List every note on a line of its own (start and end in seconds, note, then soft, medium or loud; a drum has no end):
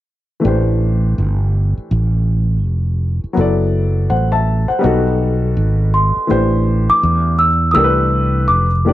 0.40 3.31 E3 medium
0.40 3.32 A3 medium
0.40 3.33 D4 medium
0.45 1.14 A1 medium
0.45 3.34 G4 medium
0.45 3.35 C5 medium
1.18 1.74 G1 medium
1.77 muted fretless electric bass stroke soft
1.91 2.65 A1 medium
2.65 3.21 F1 medium
3.24 muted fretless electric bass stroke soft
3.33 4.07 F#1 medium
3.33 4.79 F#3 medium
3.33 4.79 B3 medium
3.33 4.81 E4 medium
3.39 4.81 A4 medium
3.39 4.11 D5 medium
4.10 4.67 A1 medium
4.10 4.32 C5 soft
4.10 4.32 F#5 medium
4.32 4.68 E5 soft
4.32 4.67 A5 medium
4.68 5.04 C5 soft
4.68 5.04 F#5 medium
4.68 muted fretless electric bass stroke soft
4.79 6.25 G3 medium
4.79 6.26 B3 medium
4.79 6.26 D#4 medium
4.84 5.53 B1 medium
4.84 6.28 F#4 medium
4.84 6.28 A4 medium
5.57 6.13 G#1 medium
5.94 6.86 C6 medium
6.16 muted fretless electric bass stroke soft
6.27 6.87 A1 medium
6.27 7.45 E3 medium
6.27 7.46 A3 medium
6.27 7.46 D4 medium
6.27 7.47 G4 medium
6.27 7.47 C5 medium
6.90 7.41 D6 medium
6.90 muted fretless electric bass stroke soft
7.03 7.73 E2 medium
7.39 7.71 E6 medium
7.71 8.65 E3 medium
7.71 8.65 A3 medium
7.71 7.76 D#6 medium
7.71 8.45 E6 loud
7.76 8.45 C2 medium
7.76 8.66 D4 medium
7.76 8.66 G4 medium
7.76 7.85 A#4 medium
7.84 8.70 B4 medium
8.48 8.93 F1 medium
8.48 8.93 D6 medium
8.85 8.93 E3 medium
8.85 8.93 A3 medium
8.85 8.93 D4 medium
8.85 8.93 G4 medium
8.85 8.93 D5 medium